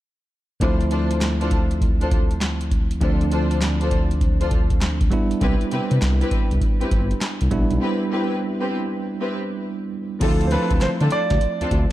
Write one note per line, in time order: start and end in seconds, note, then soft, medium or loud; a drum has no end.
0.60 2.97 D2 medium
0.60 2.97 F3 medium
0.60 2.97 A3 medium
0.60 2.98 C4 medium
0.60 0.82 D4 medium
0.60 2.98 E4 medium
0.60 0.82 F4 medium
0.60 0.82 A4 medium
0.60 0.83 C5 loud
0.60 kick loud
0.60 closed hi-hat medium
0.81 closed hi-hat soft
0.91 1.12 D4 medium
0.91 1.12 F4 medium
0.91 1.12 A4 medium
0.91 1.13 C5 medium
0.91 closed hi-hat medium
1.11 closed hi-hat medium
1.21 snare loud
1.21 clap medium
1.21 closed hi-hat medium
1.41 1.54 D4 medium
1.41 1.54 F4 medium
1.41 1.54 A4 medium
1.41 1.54 C5 medium
1.41 closed hi-hat soft
1.51 kick medium
1.51 closed hi-hat medium
1.71 closed hi-hat soft
1.81 kick medium
1.81 closed hi-hat medium
2.01 2.14 D4 medium
2.01 2.14 F4 medium
2.01 2.14 A4 medium
2.01 2.14 C5 medium
2.01 closed hi-hat soft
2.11 kick medium
2.11 closed hi-hat medium
2.31 closed hi-hat soft
2.41 snare loud
2.41 clap medium
2.41 closed hi-hat medium
2.61 closed hi-hat medium
2.71 kick medium
2.71 closed hi-hat medium
2.91 closed hi-hat soft
3.00 5.07 D2 medium
3.00 5.07 F3 medium
3.00 5.07 A3 medium
3.00 5.08 C4 medium
3.00 3.22 D4 medium
3.00 5.08 D4 medium
3.00 3.22 F4 medium
3.00 3.23 A4 medium
3.00 3.23 C5 medium
3.00 kick loud
3.00 closed hi-hat medium
3.21 closed hi-hat soft
3.31 3.52 D4 medium
3.31 3.52 F4 medium
3.31 3.53 A4 medium
3.31 3.53 C5 medium
3.31 closed hi-hat medium
3.51 closed hi-hat medium
3.61 snare loud
3.61 clap medium
3.61 closed hi-hat medium
3.81 3.94 D4 medium
3.81 3.94 F4 medium
3.81 3.94 A4 medium
3.81 3.94 C5 medium
3.81 closed hi-hat medium
3.91 kick medium
3.91 closed hi-hat medium
4.11 closed hi-hat soft
4.21 kick medium
4.21 closed hi-hat medium
4.41 4.54 D4 medium
4.41 4.54 F4 medium
4.41 4.54 A4 medium
4.41 4.54 C5 medium
4.41 closed hi-hat medium
4.51 kick medium
4.51 closed hi-hat medium
4.70 kick medium
4.70 closed hi-hat soft
4.81 snare loud
4.81 clap medium
4.81 closed hi-hat medium
5.01 kick medium
5.01 closed hi-hat soft
5.11 7.47 G3 medium
5.11 7.47 B3 medium
5.11 7.48 D4 medium
5.11 7.48 E4 medium
5.11 kick medium
5.11 closed hi-hat medium
5.31 closed hi-hat soft
5.41 5.56 C2 loud
5.41 5.62 C4 medium
5.41 5.62 E4 medium
5.41 5.62 G4 medium
5.41 5.63 B4 loud
5.41 kick loud
5.41 closed hi-hat medium
5.61 closed hi-hat soft
5.71 5.80 C3 soft
5.71 5.92 C4 medium
5.71 5.93 E4 medium
5.71 5.93 G4 medium
5.71 5.93 B4 medium
5.71 closed hi-hat medium
5.91 5.99 C3 loud
5.91 closed hi-hat medium
6.02 6.23 C2 loud
6.02 snare loud
6.02 clap medium
6.02 closed hi-hat medium
6.21 6.34 C4 medium
6.21 6.34 E4 medium
6.21 6.34 G4 medium
6.21 6.34 B4 medium
6.21 closed hi-hat medium
6.31 kick medium
6.31 closed hi-hat medium
6.51 6.59 C2 medium
6.51 closed hi-hat soft
6.61 kick medium
6.61 closed hi-hat medium
6.81 6.85 G1 soft
6.81 6.94 C4 medium
6.81 6.94 E4 medium
6.81 6.94 G4 medium
6.81 6.94 B4 medium
6.81 closed hi-hat soft
6.91 7.13 G1 loud
6.91 kick medium
6.91 closed hi-hat medium
7.11 closed hi-hat soft
7.21 snare loud
7.21 clap medium
7.21 closed hi-hat medium
7.41 7.49 C2 medium
7.41 closed hi-hat medium
7.51 7.65 A#1 medium
7.51 9.87 G3 medium
7.51 9.87 B3 medium
7.51 9.88 D4 medium
7.51 9.88 E4 medium
7.51 kick medium
7.51 closed hi-hat medium
7.71 7.79 B1 medium
7.71 closed hi-hat soft
7.81 8.02 C4 medium
7.81 8.02 E4 medium
7.81 8.02 G4 medium
7.81 8.03 B4 loud
8.11 8.32 C4 medium
8.11 8.32 E4 medium
8.11 8.33 G4 medium
8.11 8.33 B4 medium
8.61 8.74 C4 medium
8.61 8.74 E4 medium
8.61 8.74 G4 medium
8.61 8.74 B4 medium
9.21 9.34 C4 medium
9.21 9.34 E4 medium
9.21 9.34 G4 medium
9.21 9.34 B4 medium
10.20 10.57 D2 loud
10.20 11.92 F3 medium
10.20 11.92 A3 medium
10.20 10.42 C4 medium
10.20 11.92 C4 medium
10.20 10.42 D4 medium
10.20 11.92 E4 medium
10.20 10.42 F4 medium
10.20 10.42 A4 loud
10.20 10.47 A4 medium
10.20 kick loud
10.20 closed hi-hat medium
10.20 crash medium
10.41 closed hi-hat medium
10.47 10.52 C5 medium
10.47 closed hi-hat medium
10.51 10.72 C4 medium
10.51 10.72 D4 medium
10.51 10.73 F4 medium
10.51 10.73 A4 medium
10.51 10.83 B4 medium
10.71 10.78 D2 medium
10.71 kick loud
10.71 closed hi-hat medium
10.81 10.89 D3 soft
10.81 10.89 C5 medium
10.81 snare loud
10.81 clap medium
10.81 closed hi-hat medium
11.00 11.08 D3 loud
11.00 11.14 C4 medium
11.00 11.14 D4 medium
11.00 11.14 F4 medium
11.00 11.14 A4 medium
11.00 closed hi-hat medium
11.11 11.92 D5 loud
11.11 closed hi-hat medium
11.30 11.38 D2 medium
11.30 kick medium
11.30 snare medium
11.30 closed hi-hat soft
11.41 closed hi-hat medium
11.61 11.65 D2 soft
11.61 11.74 C4 medium
11.61 11.74 D4 medium
11.61 11.74 F4 medium
11.61 11.74 A4 medium
11.61 closed hi-hat soft
11.71 11.85 D2 loud
11.71 kick medium
11.71 closed hi-hat medium